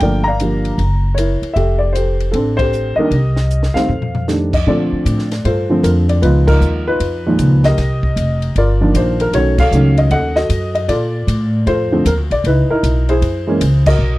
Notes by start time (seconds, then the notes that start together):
0.00 G1 D3 F3 A3 A#3 A#4 D5 G5, kick, ride
0.24 F5 A#5
0.28 D5
0.40 D3 F3 G3 A#3, hi-hat pedal, ride
0.65 ride
0.78 F#1, kick, ride
1.15 A#4 C#5, hi-hat pedal, ride
1.19 E4
1.42 muted upright bass stroke, ride
1.53 F1 G4 A4 E5, kick, ride
1.79 D5
1.93 G4 C5, hi-hat pedal, ride
1.97 A4
2.20 ride
2.32 A1 C4 D4 A4, kick, ride
2.57 G4 A4 C5, kick, ride
2.73 hi-hat pedal
2.96 D#3 G3 A#3 D4 G4 A#4 D#5, muted upright bass stroke
3.11 C2, kick, ride
3.36 snare
3.50 hi-hat pedal
3.63 snare
3.74 D#3 G3 A3 C4 A4 C5 F5, muted upright bass stroke, snare
3.88 F2, floor tom
4.02 floor tom
4.15 floor tom
4.28 D#3 G3 A3 D4, snare, hi-hat pedal
4.53 D#5, kick, crash
4.66 A#2 D3 F3 A3 C4 F4 A4 D5, kick
4.92 muted upright bass stroke
5.05 A2, kick, hi-hat pedal, ride
5.19 snare
5.31 snare, ride
5.45 G2 F4 A4 C5, kick, ride
5.69 D3 F3 A3 C4
5.83 F2 A#4, kick, hi-hat pedal, ride
6.09 D5, ride
6.22 C#2 D#3 F3 G#3 B3 D#4 F4 B4, kick, ride
6.47 D#4 F4 A#4, kick, crash
6.61 D#2, hi-hat pedal
6.87 D#4 F4 B4
7.00 F2, kick, ride
7.26 A#2 D#3 F3 G#3
7.39 C#2, kick, hi-hat pedal, ride
7.64 G4 A#4 D#5, snare, ride
7.77 C2, kick, snare, ride
8.03 kick
8.16 F1, kick, hi-hat pedal, ride
8.42 ride
8.56 G1 F4 A#4 D5, kick, ride
8.81 D#3 F3 A#3 D4
8.94 A#1 C5, kick, hi-hat pedal, ride
9.20 A#4, ride
9.33 B1 D#3 F#3 A3 C#4 F#4 A4 C#5, kick, ride
9.58 A4 C#5 F5, kick, crash
9.71 C#2 D#3 F#3 A3 C#4, hi-hat pedal
9.97 D#5, ride
10.10 D#2 A4 D#5 F#5, kick, ride
10.36 F#4 A4 D#5, snare
10.49 F#2, kick, hi-hat pedal, ride
10.75 D#5, ride
10.88 A#2 F4 A4 D5, kick, ride
11.27 A2, kick, hi-hat pedal, ride
11.66 F2 F4 A4 C5, kick, ride
11.92 D3 F3 A3 C4
12.05 D#2 A#4, kick, hi-hat pedal, ride
12.17 D2
12.30 A#1 D5, ride
12.44 C#2 D#4 E4 B4, kick, ride
12.69 D#4 E4 A#4, muted upright bass stroke
12.83 B1, kick, hi-hat pedal, ride
13.09 E4 G#4 C5, ride
13.22 F#2, kick, ride
13.47 E3 G#3 A#3 C#4
13.61 C#2, kick, hi-hat pedal, ride
13.86 F#4 A#4 D#5, kick, crash
13.99 B1